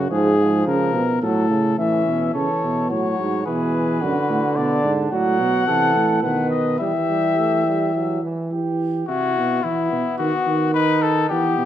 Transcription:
Already playing: tuba F#2, trombone C#3
0.11 tuba G#2, trombone F3, trumpet G#4
0.38 trombone F3
0.66 tuba C#3, trumpet A#4
0.95 tuba B2
1.22 tuba A2, trombone F#3, trumpet A4
1.50 trombone C#3
1.77 tuba A2, trombone E3, flugelhorn C#4, trumpet E5
2.06 tuba B2
2.34 tuba C#3, trombone E3, flugelhorn A4, trumpet C#5
2.63 tuba B2
2.89 tuba A2, trombone F#3, flugelhorn F#4, trumpet C#5
3.19 tuba G#2
3.46 tuba B2, trombone E3, flugelhorn G#4, trumpet B4
4.01 tuba F#2, trombone D3, flugelhorn F#4
4.29 tuba A2
4.56 tuba B2, flugelhorn D4, trumpet D5
4.84 tuba G#2
5.11 tuba A2, trombone F#3, flugelhorn F#4, trumpet F#5
5.39 tuba B2
5.67 tuba C3, trombone E3, flugelhorn A4
5.95 tuba A2
6.22 tuba B2, trombone D#3, flugelhorn B4, trumpet F#5
6.51 trumpet D#5
6.79 tuba E3, trombone G3, flugelhorn G4, trumpet E5
7.09 trombone G3
7.38 trombone A3
7.67 trombone G3
7.95 trombone F#3
8.23 trombone E3
8.52 tuba E3, flugelhorn G4
9.08 tuba C3, flugelhorn E4, trumpet F#4
9.36 tuba B2
9.64 tuba E3, flugelhorn B3, trumpet E4
9.92 tuba B2
10.18 tuba D#3, trumpet F#4
10.47 tuba D#3
10.74 flugelhorn D#4, trumpet B4
11.02 trumpet A4
11.30 tuba E3, flugelhorn B3, trumpet G4
11.58 tuba B2

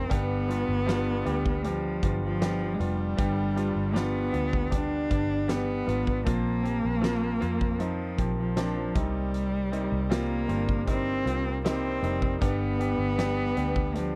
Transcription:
Already playing: grand piano A#3 C4 D#4 G4, cello C4
0.09 fingered electric bass G1, grand piano G2 D3 G3 B3 D4 G4, cello B3, kick, closed hi-hat
0.49 grand piano G3 B3 D4 F4, closed hi-hat
0.68 fingered electric bass G1
0.86 grand piano G3 B3 D4 F4, snare, closed hi-hat
1.25 fingered electric bass D2, grand piano G3 B3 D4 G4, closed hi-hat
1.46 kick
1.64 cello F3, grand piano G3 B3 D4 G4, closed hi-hat
2.03 fingered electric bass G1, grand piano G3 B3 D4 F4, kick, closed hi-hat
2.23 cello F3
2.41 grand piano G3 B3 D4 G4, snare, closed hi-hat
2.74 cello G#3
2.79 fingered electric bass F1, grand piano G3 B3 D4 F4, cello G3, closed hi-hat
3.17 fingered electric bass G1, grand piano G2 D3 G3 B3 D4 G4, kick, closed hi-hat
3.56 grand piano G3 B3 D4 F4, closed hi-hat
3.76 fingered electric bass G1
3.93 grand piano G3 B3 D4 F4, cello B3, snare, closed hi-hat
4.32 fingered electric bass D2, grand piano G3 B3 D4 F4, closed hi-hat
4.53 kick
4.70 grand piano G3 B3 D4 G4, kick, closed hi-hat
4.75 cello D4
5.10 fingered electric bass G1, grand piano G3 B3 D4 G4, kick, closed hi-hat
5.48 grand piano G3 B3 D4 G4, cello B3, snare, closed hi-hat
5.86 fingered electric bass G#1, grand piano G3 B3 D4 F4, closed hi-hat
6.07 kick
6.25 fingered electric bass A#1, grand piano A#2 F3 A#3 C4 F4, cello A#3, kick, closed hi-hat
6.63 grand piano F3 A#3 C4 G4, closed hi-hat
6.85 fingered electric bass A#1
7.01 grand piano F3 A#3 C4 F4, snare, closed hi-hat
7.40 fingered electric bass F2, grand piano F3 A#3 C4 F4, closed hi-hat
7.61 kick
7.79 grand piano F3 A#3 C4 D#4, cello F3, closed hi-hat
8.18 fingered electric bass A#1, grand piano F3 A#3 C4 G4, kick, closed hi-hat
8.39 cello F3
8.56 grand piano F3 A#3 C4 D4, snare, closed hi-hat
8.95 fingered electric bass C2, grand piano C3 G3 A#3 C4 D#4, cello G3, kick, closed hi-hat
9.34 closed hi-hat
9.72 grand piano G3 A#3 C4 D#4, closed hi-hat
9.92 fingered electric bass C2
10.10 grand piano G3 A#3 C4 F4, cello A#3, snare, closed hi-hat
10.48 fingered electric bass G1, grand piano G3 A#3 C4 D4, closed hi-hat
10.69 kick
10.87 grand piano G3 A#3 C4 D#4, cello C4, kick, closed hi-hat
11.25 fingered electric bass C2, grand piano G3 A#3 C4 F4, closed hi-hat
11.65 grand piano G3 A#3 C4 D#4, cello C4, snare, closed hi-hat
12.02 fingered electric bass F1, grand piano G3 A#3 C4 D#4, closed hi-hat
12.22 kick
12.41 fingered electric bass G1, grand piano G2 D3 G3 B3 D4 G4, cello B3, kick, closed hi-hat
12.79 grand piano G3 B3 D4 G4, closed hi-hat
12.98 fingered electric bass G1
13.18 grand piano G3 B3 D4 G4, snare, closed hi-hat
13.57 fingered electric bass D2, grand piano G3 B3 D4 G4, closed hi-hat
13.76 kick
13.95 cello F3, grand piano G3 B3 D4 G4, closed hi-hat

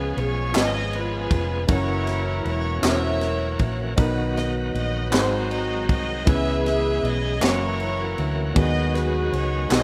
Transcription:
Already playing: fingered electric bass C#2, grand piano C#3 C#4 F4 G#4 B4 C#5, tonewheel organ F3 G#3 B3 C#4 G#4, string section G#4 B4
0.17 fingered electric bass B1, string section C#5, ride
0.52 fingered electric bass G#1, grand piano C#4 F4 G#4 B4 D#5, clap, ride
0.57 string section D#5, snare
0.93 string section F4 G#4 B4, ride
1.31 fingered electric bass F1, kick, ride
1.67 fingered electric bass F#1, tonewheel organ E3 F#3 A3 C#4 F#4, grand piano C#4 E4 F#4 A#4 C#5, string section E4 A#4 C#5, kick, ride
1.76 tonewheel organ A#3
2.07 snare, ride
2.45 fingered electric bass E1, string section C#5, ride
2.82 fingered electric bass E1, grand piano C#4 E4 F#4 A#4 C5, string section A#4 C#5 E5, snare, clap, ride
2.91 grand piano C#5
3.21 snare, ride
3.59 fingered electric bass A#1, kick, ride
3.96 fingered electric bass B1, tonewheel organ D#3 F#3 B3 F#4, grand piano D#3 B3 D#4 F#4 A#4 B4, kick, ride
4.37 string section D#5, snare, ride
4.74 fingered electric bass A#1, string section D#5, ride
5.11 fingered electric bass G#1, grand piano G#2 C4 D#4 F#4 G#4 A#4, tonewheel organ D#3 F#3 G#3 C4 F#4, string section D#4 F#4 C5, snare, clap, ride
5.20 grand piano C5
5.51 string section D#5, ride
5.89 fingered electric bass C2, string section D#5, kick, ride
6.25 fingered electric bass C#2, grand piano C#3 B3 C#4 E4 G#4 B4, tonewheel organ E3 G#3 B3 C#4 G#4, string section G#4 B4 E5, kick, ride
6.66 string section E5, snare, ride
7.03 fingered electric bass B1, string section D#5, ride
7.40 fingered electric bass F#1, tonewheel organ E3 F#3 A#3 C#4 F#4, grand piano A#3 C#4 E4 F#4 A#4, string section E4 A#4 C#5, snare, clap, ride
7.80 ride
8.18 fingered electric bass D2, ride
8.54 fingered electric bass D#2, grand piano D#3 B3 D4 F#4 G#4 B4, tonewheel organ D#3 F#3 G#3 B3 E4, string section F#4 G#4 D#5, kick, ride
8.61 grand piano D#4, tonewheel organ F#4
8.95 string section B4, snare, ride
9.33 fingered electric bass C#2, string section C#5, ride
9.69 fingered electric bass B1, grand piano B3 D#4 F#4 G#4 C5, string section F#4 G#4 D#5, snare, clap, ride
9.79 grand piano C#5

